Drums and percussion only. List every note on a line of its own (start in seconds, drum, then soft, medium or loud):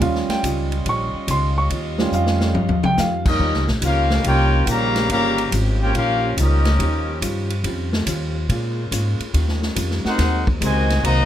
0.01 kick soft
0.01 ride medium
0.15 snare soft
0.29 snare medium
0.29 ride medium
0.43 kick soft
0.43 hi-hat pedal medium
0.43 ride medium
0.72 ride soft
0.86 kick soft
0.86 ride medium
1.28 kick soft
1.28 hi-hat pedal medium
1.28 ride medium
1.70 kick soft
1.70 ride medium
1.98 snare medium
2.12 hi-hat pedal medium
2.26 snare medium
2.40 snare medium
2.55 high tom medium
2.69 high tom medium
2.83 high tom loud
2.97 snare medium
2.97 hi-hat pedal medium
3.25 kick medium
3.25 crash medium
3.40 kick soft
3.54 snare soft
3.68 snare medium
3.82 kick soft
3.82 hi-hat pedal medium
3.82 ride medium
4.10 snare medium
4.24 kick soft
4.24 ride medium
4.67 kick soft
4.67 hi-hat pedal medium
4.67 ride medium
4.96 snare medium
4.96 ride medium
5.09 kick soft
5.09 ride medium
5.38 ride medium
5.52 kick soft
5.52 hi-hat pedal medium
5.52 ride medium
5.94 kick soft
5.94 ride medium
6.37 kick soft
6.37 hi-hat pedal medium
6.37 ride medium
6.65 snare medium
6.65 ride medium
6.79 kick soft
6.79 ride medium
7.22 kick soft
7.22 hi-hat pedal medium
7.22 ride medium
7.50 ride medium
7.64 kick soft
7.64 ride medium
7.93 snare medium
8.07 kick soft
8.07 hi-hat pedal medium
8.07 ride medium
8.49 kick soft
8.49 ride medium
8.92 kick soft
8.92 hi-hat pedal medium
8.92 ride medium
9.20 ride medium
9.34 kick soft
9.34 ride medium
9.48 snare soft
9.62 snare medium
9.76 kick soft
9.76 hi-hat pedal medium
9.76 ride medium
9.91 snare soft
10.05 snare medium
10.19 kick soft
10.19 snare soft
10.19 ride medium
10.47 kick medium
10.61 kick soft
10.61 hi-hat pedal medium
10.61 ride medium
10.90 snare soft
10.90 ride medium
11.04 kick soft
11.04 ride medium